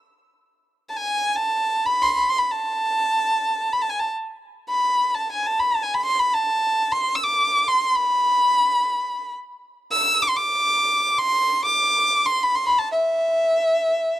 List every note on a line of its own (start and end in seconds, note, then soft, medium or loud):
0.89 0.98 A5 soft
0.96 1.37 G#5 medium
1.35 1.88 A5 medium
1.86 2.04 B5 medium
2.02 2.10 B5 medium
2.02 2.07 C6 medium
2.09 2.17 C6 medium
2.15 2.30 B5 medium
2.29 2.40 C6 medium
2.38 2.52 B5 medium
2.51 3.74 A5 medium
3.72 3.83 B5 medium
3.82 3.91 A5 medium
3.89 4.01 G#5 medium
3.99 4.09 A5 medium
4.69 5.16 B5 medium
5.14 5.31 A5 medium
5.32 5.48 G#5 medium
5.46 5.61 A5 medium
5.59 5.73 B5 medium
5.71 5.84 A5 medium
5.82 5.96 G#5 medium
5.94 6.04 B5 medium
6.05 6.20 C6 medium
6.19 6.34 B5 medium
6.33 6.93 A5 medium
6.92 7.16 C6 medium
7.15 7.25 E6 medium
7.23 7.69 D6 medium
7.68 7.97 C6 medium
7.95 9.33 B5 medium
9.92 10.23 E6 loud
10.22 10.30 D6 medium
10.29 10.38 C6 medium
10.36 11.20 D6 medium
11.18 11.64 C6 medium
11.65 12.27 D6 medium
12.26 12.44 C6 medium
12.43 12.57 B5 medium
12.55 12.63 C6 medium
12.63 12.80 B5 medium
12.63 12.68 C6 medium
12.78 12.91 A5 medium
12.92 14.20 E5 medium